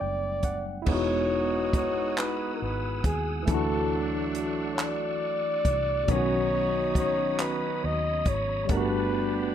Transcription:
0.00 0.83 F#1 medium
0.00 0.86 F#3 medium
0.00 0.81 G3 medium
0.00 0.82 A3 medium
0.00 0.83 B3 medium
0.00 0.85 D4 medium
0.00 0.84 D5 medium
0.00 0.41 G5 medium
0.43 0.84 F#5 medium
0.43 kick medium
0.43 closed hi-hat medium
0.82 3.43 G#3 medium
0.82 3.41 E4 medium
0.82 3.45 G#4 medium
0.82 3.45 D#6 medium
0.82 6.04 E6 medium
0.86 2.57 E1 medium
0.86 3.00 B3 medium
0.86 3.44 B3 medium
0.86 3.00 D#4 medium
0.86 3.00 F#4 medium
0.86 1.71 C#5 loud
0.86 6.04 F#5 medium
0.86 kick loud
0.86 crash medium
0.91 3.46 D#4 medium
0.91 3.47 F#4 medium
1.73 2.20 C#5 medium
1.73 kick medium
1.73 closed hi-hat medium
2.17 2.54 B4 medium
2.17 clap loud
2.17 closed hi-hat medium
2.56 2.64 A#4 medium
2.62 3.01 G#1 loud
2.62 3.05 B4 medium
3.04 3.44 D#2 medium
3.04 3.43 G#4 medium
3.04 kick medium
3.04 closed hi-hat medium
3.43 6.02 E3 medium
3.43 6.03 A3 medium
3.43 3.52 G#4 medium
3.43 6.05 D5 medium
3.47 5.61 D2 loud
3.47 5.61 F#3 medium
3.47 5.61 A3 medium
3.47 5.61 D4 medium
3.47 6.05 E4 medium
3.47 4.47 A4 loud
3.47 6.05 C#6 medium
3.47 kick loud
3.47 closed hi-hat medium
3.51 6.06 D4 medium
3.51 6.08 F#4 medium
4.35 closed hi-hat medium
4.74 4.82 C#5 medium
4.78 6.13 D5 loud
4.78 clap loud
4.78 closed hi-hat medium
5.65 6.05 C2 medium
5.65 kick medium
5.65 closed hi-hat medium
6.04 6.13 C#3 medium
6.04 8.65 F#3 medium
6.08 7.79 B1 medium
6.08 8.66 D#3 medium
6.08 8.66 B3 medium
6.08 8.22 C#4 medium
6.08 8.22 D#4 medium
6.08 8.22 F#4 medium
6.08 8.67 C#5 medium
6.08 6.97 C#5 loud
6.08 8.67 A#5 medium
6.08 8.66 B5 medium
6.08 8.66 D#6 medium
6.08 kick loud
6.08 closed hi-hat medium
6.12 8.67 C#4 medium
6.12 8.69 F#4 medium
6.95 7.43 C#5 medium
6.95 kick medium
6.95 closed hi-hat medium
7.39 7.86 B4 loud
7.39 clap loud
7.39 closed hi-hat medium
7.84 8.23 D#2 medium
7.84 8.30 D#5 loud
8.26 8.66 G#1 medium
8.26 8.71 C#5 loud
8.26 kick medium
8.26 closed hi-hat medium
8.65 9.55 G3 medium
8.65 9.55 A3 medium
8.65 closed hi-hat medium
8.69 9.55 G1 loud
8.69 9.55 G3 medium
8.69 9.55 B3 medium
8.69 9.55 D4 medium
8.69 9.55 G4 medium
8.69 9.55 B4 loud
8.69 9.55 F#5 medium
8.69 9.55 A5 medium
8.69 9.55 B5 medium
8.69 kick loud
8.74 9.55 D4 medium
8.74 9.55 F#4 medium

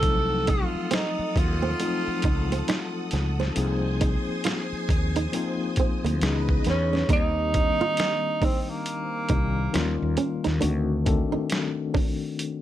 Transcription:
0.00 0.62 C2 medium
0.00 1.61 F3 medium
0.00 1.62 A3 medium
0.00 1.62 C4 medium
0.00 1.62 D#4 medium
0.00 0.52 A4 loud
0.00 kick loud
0.00 closed hi-hat medium
0.04 1.63 F#3 medium
0.04 3.53 A4 medium
0.04 3.54 F#5 medium
0.04 3.53 D#6 medium
0.47 0.62 D#4 medium
0.47 0.96 F4 medium
0.47 kick medium
0.47 closed hi-hat medium
0.75 muted fretless electric bass stroke soft
0.91 1.06 C4 medium
0.91 1.40 D#4 medium
0.91 snare loud
0.91 closed hi-hat medium
1.19 muted fretless electric bass stroke soft
1.36 1.73 D#2 medium
1.36 3.13 F4 medium
1.36 muted nylon-string guitar stroke soft
1.36 kick medium
1.36 closed hi-hat medium
1.62 1.72 C4 medium
1.80 3.38 F3 medium
1.80 3.39 A3 medium
1.80 3.39 C4 medium
1.80 3.39 D#4 medium
1.80 3.40 F4 medium
1.80 muted nylon-string guitar stroke soft
1.80 closed hi-hat medium
2.07 muted fretless electric bass stroke soft
2.22 2.61 C#2 medium
2.22 2.39 D#4 medium
2.22 kick medium
2.22 closed hi-hat medium
2.52 2.61 C4 medium
2.52 closed hi-hat soft
2.68 2.83 D#4 medium
2.68 snare loud
2.68 closed hi-hat medium
3.11 3.49 C#2 medium
3.11 muted nylon-string guitar stroke soft
3.11 snare soft
3.11 closed hi-hat medium
3.40 3.49 C4 medium
3.40 snare soft
3.55 4.16 C2 medium
3.55 5.15 F3 medium
3.55 5.15 A#3 medium
3.55 5.15 C4 medium
3.55 5.15 D#4 medium
3.55 5.16 G#4 medium
3.55 6.17 C5 medium
3.55 6.18 G#5 medium
3.55 7.05 D#6 medium
3.55 closed hi-hat medium
4.01 4.15 D#4 medium
4.01 kick medium
4.01 closed hi-hat medium
4.28 muted fretless electric bass stroke soft
4.44 4.59 F4 medium
4.44 snare loud
4.44 closed hi-hat medium
4.73 muted fretless electric bass stroke soft
4.89 5.26 D#2 medium
4.89 muted nylon-string guitar stroke soft
4.89 kick medium
4.89 closed hi-hat medium
5.16 5.26 D#4 medium
5.16 closed hi-hat soft
5.32 6.21 F3 medium
5.32 6.21 A#3 medium
5.32 6.21 C4 medium
5.32 6.21 D#4 medium
5.32 6.22 F4 medium
5.32 muted nylon-string guitar stroke soft
5.32 closed hi-hat medium
5.76 5.93 C4 medium
5.76 muted fretless electric bass stroke soft
5.76 kick medium
5.76 closed hi-hat medium
6.04 6.18 D2 medium
6.04 6.14 A#3 medium
6.04 closed hi-hat soft
6.20 6.58 C#2 medium
6.20 7.00 E3 medium
6.20 7.00 B3 medium
6.20 7.01 C#4 medium
6.20 7.01 D#4 medium
6.20 7.01 G#4 medium
6.20 7.09 B4 medium
6.20 7.09 D#5 medium
6.20 muted nylon-string guitar stroke soft
6.20 snare medium
6.20 closed hi-hat medium
6.49 kick medium
6.64 7.02 E2 medium
6.64 6.81 B3 medium
6.64 snare soft
6.64 closed hi-hat medium
6.70 7.09 C#4 medium
6.93 7.02 C#4 medium
6.93 snare soft
7.07 7.68 D#2 medium
7.07 7.48 D#3 medium
7.07 7.48 G3 medium
7.07 7.48 A#3 medium
7.07 7.49 C4 medium
7.07 7.24 D#4 medium
7.07 7.49 G4 medium
7.07 kick loud
7.07 closed hi-hat medium
7.13 8.46 D#4 loud
7.52 9.11 D#3 medium
7.52 9.11 G3 medium
7.52 9.12 A#3 medium
7.52 9.12 C4 medium
7.52 7.62 D4 medium
7.52 muted nylon-string guitar stroke soft
7.52 kick medium
7.52 closed hi-hat medium
7.60 9.15 D#4 medium
7.81 7.90 F4 medium
7.81 muted fretless electric bass stroke soft
7.97 snare loud
7.97 closed hi-hat medium
8.42 8.61 C4 medium
8.42 8.57 D#4 medium
8.42 kick medium
8.42 open hi-hat soft
8.61 8.71 C4 medium
8.70 10.19 A#3 medium
8.86 closed hi-hat medium
9.29 9.67 C2 medium
9.29 9.71 D#3 medium
9.29 9.74 G3 medium
9.29 9.72 A#3 medium
9.29 9.74 C4 medium
9.29 9.44 D#4 medium
9.29 9.75 G4 medium
9.29 kick medium
9.29 closed hi-hat medium
9.72 9.97 D#2 medium
9.72 10.52 D#3 medium
9.72 9.81 F3 medium
9.72 10.53 A#3 medium
9.72 10.53 C#4 medium
9.72 10.54 F4 medium
9.72 muted nylon-string guitar stroke soft
9.72 snare loud
9.72 closed hi-hat medium
9.79 10.56 G3 medium
10.02 10.16 D#2 medium
10.17 10.32 C#4 medium
10.17 closed hi-hat medium
10.44 10.60 D#2 medium
10.44 10.54 D#4 medium
10.44 snare soft
10.44 closed hi-hat soft
10.60 11.22 D2 loud
10.60 11.00 D#3 medium
10.60 11.01 A3 medium
10.60 11.01 C4 medium
10.60 10.76 D4 medium
10.60 11.01 D4 medium
10.60 11.02 F#4 medium
10.60 closed hi-hat medium
11.04 12.62 D#3 medium
11.04 12.62 A3 medium
11.04 12.62 C4 medium
11.04 12.62 D4 medium
11.04 12.62 A4 medium
11.04 muted nylon-string guitar stroke soft
11.04 kick medium
11.04 closed hi-hat medium
11.32 11.42 D#4 medium
11.32 muted fretless electric bass stroke soft
11.50 snare loud
11.50 closed hi-hat medium
11.94 12.09 D4 medium
11.94 kick medium
11.94 open hi-hat soft
12.39 closed hi-hat medium

